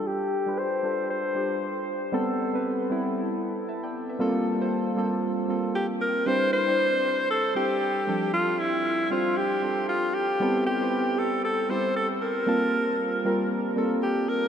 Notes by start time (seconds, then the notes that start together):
Already playing: G3 D4 F4 A4
0.07 G4
0.46 G3 D4 F4 B4
0.58 C5
0.83 G3 D4 F4 A4
1.10 C5
1.35 G3 D4 F4 G4
2.12 G3 B3 C4 A4
2.53 G3 B3 C4 B4
2.90 G3 B3 C4 E4
3.69 E5 A5
3.83 D5 G5
4.09 B4 E5
4.19 G3 A#3 C4 F4 A4
4.60 G3 A#3 C4 F4 C5
4.96 G3 A#3 C4 F4 A4
5.48 G3 A#3 C4 F4 A4
5.75 G4
6.01 A#4
6.26 G3 C4 D4 E4 B4 C5
6.53 C5
6.67 G3 C4 D4 E4 D5
7.30 A4
7.55 G3 C4 D4 E4 G4 A4
8.07 F3 G3 C4 D4 A4
8.34 F4
8.60 E4
9.10 G3 C4 D4 F4 C5
9.37 G4
9.62 G3 C4 D4 F4 A4
9.89 F4
10.14 G4
10.40 G3 B3 C4 E4 A4
10.66 G4
10.81 G3 C4 E4 B4 C5
11.18 A4
11.45 A4
11.69 G3 B3 C4 E4 G4 C5
11.96 A4
12.22 A#4
12.46 G3 A#3 C4 F4 A5
13.24 G3 A#3 C4 F4 A#4
13.76 G3 A#3 C4 F4 A4
14.03 G4
14.29 A#4